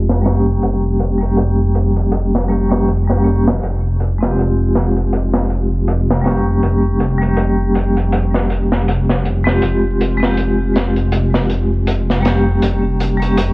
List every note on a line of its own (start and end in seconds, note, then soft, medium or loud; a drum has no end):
0.00 0.60 F1 medium
0.00 0.19 G#3 medium
0.00 0.20 C4 medium
0.00 0.21 F4 medium
0.00 0.23 G4 medium
0.09 snare soft
0.22 1.15 G3 medium
0.22 1.16 A#3 medium
0.22 closed hi-hat medium
0.26 1.17 C#4 medium
0.26 1.18 G4 medium
0.26 snare soft
0.63 3.59 F1 medium
0.63 closed hi-hat medium
1.00 closed hi-hat medium
1.18 2.45 G3 medium
1.18 2.46 A#3 medium
1.18 closed hi-hat soft
1.23 2.47 C#4 medium
1.23 2.49 G4 medium
1.37 closed hi-hat medium
1.75 closed hi-hat medium
1.96 closed hi-hat soft
2.12 closed hi-hat medium
2.35 snare soft
2.49 2.67 G3 medium
2.49 2.68 A#3 medium
2.49 2.69 C#4 medium
2.49 2.69 G4 medium
2.49 closed hi-hat medium
2.69 2.87 G3 medium
2.69 2.88 A#3 medium
2.69 2.88 C#4 medium
2.69 2.89 G4 medium
2.69 snare soft
2.88 closed hi-hat medium
3.07 3.20 G3 medium
3.07 3.21 A#3 medium
3.07 3.21 C#4 medium
3.07 3.22 G4 medium
3.07 snare soft
3.23 3.46 G3 medium
3.23 3.47 A#3 medium
3.23 3.47 C#4 medium
3.23 3.48 G4 medium
3.23 closed hi-hat medium
3.48 snare medium
3.63 6.60 F1 medium
3.63 closed hi-hat medium
4.00 closed hi-hat medium
4.18 6.20 G#3 medium
4.18 6.21 C4 medium
4.23 6.22 F4 medium
4.23 6.23 G4 medium
4.23 snare soft
4.39 closed hi-hat medium
4.75 snare soft
4.75 closed hi-hat medium
4.97 closed hi-hat soft
5.13 closed hi-hat medium
5.34 snare soft
5.50 closed hi-hat medium
5.88 closed hi-hat medium
6.10 snare soft
6.21 7.14 G3 medium
6.21 7.16 A#3 medium
6.21 closed hi-hat medium
6.26 7.17 C#4 medium
6.26 7.18 G4 medium
6.26 snare soft
6.63 9.60 F1 medium
6.63 closed hi-hat medium
7.00 closed hi-hat medium
7.18 9.40 G3 medium
7.18 9.41 A#3 medium
7.18 closed hi-hat soft
7.23 9.42 C#4 medium
7.23 9.43 G4 medium
7.37 closed hi-hat medium
7.75 closed hi-hat medium
7.97 closed hi-hat soft
8.12 closed hi-hat medium
8.34 snare soft
8.50 closed hi-hat medium
8.72 snare soft
8.88 closed hi-hat medium
9.09 snare soft
9.25 closed hi-hat medium
9.44 10.15 G#3 medium
9.44 10.16 C4 medium
9.44 10.16 F4 medium
9.44 10.17 G4 medium
9.44 snare soft
9.62 12.60 F1 medium
9.62 closed hi-hat medium
10.01 closed hi-hat medium
10.17 12.19 G#3 medium
10.17 12.20 C4 medium
10.22 12.22 F4 medium
10.22 12.23 G4 medium
10.22 snare soft
10.37 closed hi-hat medium
10.76 snare soft
10.76 closed hi-hat medium
10.96 closed hi-hat soft
11.12 closed hi-hat medium
11.34 snare soft
11.49 closed hi-hat medium
11.87 closed hi-hat medium
12.10 snare soft
12.21 13.14 G3 medium
12.21 13.15 A#3 medium
12.25 13.16 C#4 medium
12.25 13.18 G4 medium
12.25 snare soft
12.25 closed hi-hat medium
12.62 13.53 F1 medium
12.62 closed hi-hat medium
13.00 closed hi-hat medium
13.17 13.53 G3 medium
13.17 13.53 A#3 medium
13.22 13.53 C#4 medium
13.22 13.53 G4 medium
13.22 closed hi-hat soft
13.37 closed hi-hat medium